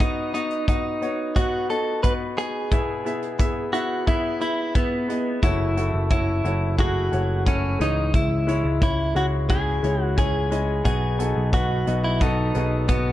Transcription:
0.00 B3 D#4 F#4 D#5, kick, closed hi-hat
0.34 B3 D#4 F#4 D#5, closed hi-hat
0.51 closed hi-hat
0.68 B3 D#4 F#4 D#5, kick, closed hi-hat
1.01 B3 D#4 F#4 C#5, closed hi-hat
1.36 B3 D#4 F#4 D#5, kick, closed hi-hat
1.70 B3 D#4 F#4 A4 D#5, closed hi-hat
2.03 B3 D#4 F#4 B4, kick, closed hi-hat
2.37 B3 D#4 F#4 G#4, closed hi-hat
2.71 B2 B3 E4 G#4 E5, kick, closed hi-hat
3.05 B3 E4 G#4 E5, closed hi-hat
3.22 closed hi-hat
3.39 B3 E4 G#4 E5, kick, closed hi-hat
3.73 B3 E4 F#4 G#4 E5, closed hi-hat
4.06 B3 E4 G#4 E5, kick, closed hi-hat
4.40 B3 E4 G#4 E5, closed hi-hat
4.75 B3 E4 G#4 E5, kick, closed hi-hat
5.08 B3 E4 G#4 D#5, closed hi-hat
5.42 F#1 C#3 A3 E4 F#4 C#5, kick, closed hi-hat
5.76 A3 E4 F#4 A4, closed hi-hat
5.94 F#1
6.10 A3 E4 F#4 C#5, kick, closed hi-hat
6.44 F#1 A3 E4 F#4 C#5, closed hi-hat
6.78 A3 E4 F#4 G#4, kick, closed hi-hat
7.11 F#1 A3 E4 F#4 C#5, closed hi-hat
7.45 A3 C#4 E4 F#4 C#5, kick, closed hi-hat
7.79 C#2 G#2 E3 G#3 C#4 D#4 C#5, closed hi-hat
8.14 C#2 E4, kick, closed hi-hat
8.47 G#3 C#4 E4 C#5, closed hi-hat
8.64 C#2
8.81 G#3 C#4 E4 C#5, kick, closed hi-hat
9.15 C#2 G#3 C#4 E4 F#4, closed hi-hat
9.49 G#3 C#4 E4 G#4, kick, closed hi-hat
9.83 C#2 G#3 C#4 E4 C#5, closed hi-hat
10.02 F#4
10.17 G#3 C#4 E4 G#4 C#5, kick, closed hi-hat
10.51 G#3 C#4 E4 D#5, closed hi-hat
10.84 B1 B3 D#4 F#4 G#4 D#5, kick, closed hi-hat
11.19 B3 D#4 F#4 A4, closed hi-hat
11.36 B1
11.53 B3 D#4 F#4 B4, kick, closed hi-hat
11.86 B1 B3 D#4 F#4 D#5, closed hi-hat
12.04 E4
12.20 B3 D#4 F#4 A4, kick, closed hi-hat
12.55 B1 B3 D#4 F#4 G#4, closed hi-hat
12.88 B3 D#4 F#4 D#5, kick, closed hi-hat

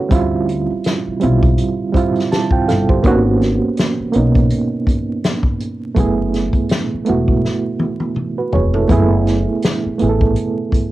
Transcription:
Already playing: A3 B3 C#4 E4 F#4 G#4 A4 B4 C#5
0.09 D2 G3 C4 E4, kick, closed hi-hat
0.14 F4
0.49 closed hi-hat
0.71 muted upright bass stroke
0.84 snare, closed hi-hat
1.07 muted upright bass stroke
1.20 B1 G3 C4 E4, closed hi-hat
1.24 F4
1.43 kick, closed hi-hat
1.58 closed hi-hat
1.92 G3 C4 E4, kick, closed hi-hat
1.97 F4
2.16 snare, closed hi-hat
2.32 A5, snare, closed hi-hat
2.51 C4 F4 G5, kick
2.68 G1 E4 A4 F5, snare, closed hi-hat
2.89 G4 C5, kick
3.03 G#1 A#3 B3 C#4, kick, closed hi-hat
3.07 F#4
3.41 snare, closed hi-hat
3.64 muted upright bass stroke
3.77 snare, closed hi-hat
4.00 muted upright bass stroke
4.12 B1 A#3 B3 C#4, closed hi-hat
4.17 D#4
4.35 kick, closed hi-hat
4.50 closed hi-hat
4.87 kick, closed hi-hat
5.24 snare, closed hi-hat
5.43 kick
5.60 closed hi-hat
5.95 F#1 A3 B3 E4, kick, closed hi-hat
5.99 G#4
6.34 snare, closed hi-hat
6.53 muted upright bass stroke, kick, closed hi-hat
6.69 snare, closed hi-hat
6.94 muted upright bass stroke
7.05 A3 B3 E4, closed hi-hat
7.09 E1 F#4
7.28 kick
7.45 snare
7.79 high tom
8.00 high tom
8.16 mid tom
8.38 F#4 B4
8.52 F1 G#4 C#5, floor tom
8.74 E4 A4, floor tom
8.88 F#1 A3 B3 E4, kick, closed hi-hat
8.92 G#4
9.27 snare, closed hi-hat
9.49 muted upright bass stroke
9.62 snare, closed hi-hat
9.86 muted upright bass stroke
9.98 A1 A3 B3 E4, closed hi-hat
10.03 G#4
10.09 A4
10.21 kick
10.36 closed hi-hat
10.72 kick, closed hi-hat

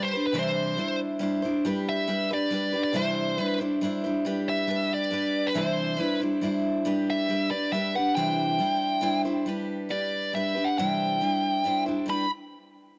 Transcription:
Already playing: G3 D4 G4 B4
0.02 C5
0.13 D4 G4 B4
0.27 B4
0.33 C3 E3 G3 D4 E4 C5
0.39 C5
0.76 G3 D4 E4 C5
1.19 G3 D4 E4 C5
1.42 G3 D4 E4 C5
1.65 G3 D4 G4 B4
1.89 E5
2.07 G3 D4 G4 B4
2.30 D4 G4 B4 D5
2.50 G3 D4 G4 B4
2.72 D4 G4 B4
2.84 D5
2.93 C3 E3 G3 D4 E4 C5
3.38 G3 D4 E4 B4 C5
3.58 G3 D4 E4 C5
3.81 G3 D4 E4 C5
4.04 G3 D4 E4 C5
4.25 G3 D4 G4 B4
4.49 E5
4.67 G3 D4 G4 B4
4.94 D5
5.11 G3 D4 G4 B4
5.47 B4
5.54 C3 E3 G3 D4 E4 C5
5.59 C5
5.97 G3 D4 E4 B4 C5
6.20 G3 D4 E4 C5
6.41 G3 D4 E4 C5
6.85 G3 D4 G4 B4
7.10 E5
7.29 G3 D4 G4 B4
7.49 D4 G4 B4 D5
7.72 G3 D4 G4 B4 E5
7.95 D4 G4 B4 F#5
8.15 C3 E3 G3 D4 E4 C5 G5
8.59 G3 D4 E4 C5
9.01 G3 D4 E4 C5
9.25 G3 D4 E4 C5
9.46 G3 D4 G4 B4
9.89 G3 D4 G4 B4 D5
10.33 G3 D4 G4 B4 E5
10.55 D4 G4 B4
10.65 F#5
10.78 C3 E3 G3 D4 E4 C5 G5
11.21 G3 D4 E4 C5
11.64 G3 D4 E4 C5
11.86 G3 D4 E4 C5
12.06 G3 D4 G4 B4
12.10 B5

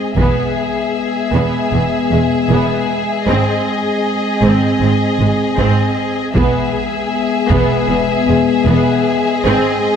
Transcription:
Already playing: G#3 C4 G#4 D#5
0.16 E1 E2 G#3 B3 G#4 E5, taiko
1.33 E1 E2 B3
1.72 E1 E2 B3
2.11 E1 E2 G#3
2.50 E1 E2 B3
3.26 G#1 G#2 C4 D#5
4.42 G#1 G#2 C4
4.81 G#1 G#2 C4
5.20 G#1 G#2 G#3
5.58 G#1 G#2 C4
6.35 E1 E2 G#3 B3 G#4 E5, taiko
7.50 E1 E2 B3, taiko
7.89 E1 E2 B3
8.28 E1 E2 G#3
8.67 E1 E2 B3
9.44 G#1 G#2 C4 D#5

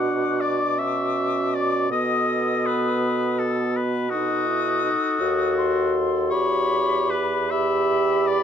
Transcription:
Already playing: B2 D4 F#4 F#5 D6
0.40 D5
0.78 C#4 E5
1.54 D5
1.90 B2 B3 A4 D#5 D#6
2.66 B4
3.39 A4
3.76 B4
4.10 D#4 F#4 A4 D#6
4.47 E4
4.84 D#4
5.20 D#2 F#4
5.57 C6
6.30 E2 G4 C#5 B5
7.10 B4
7.50 G4 E5 B5
8.27 D5

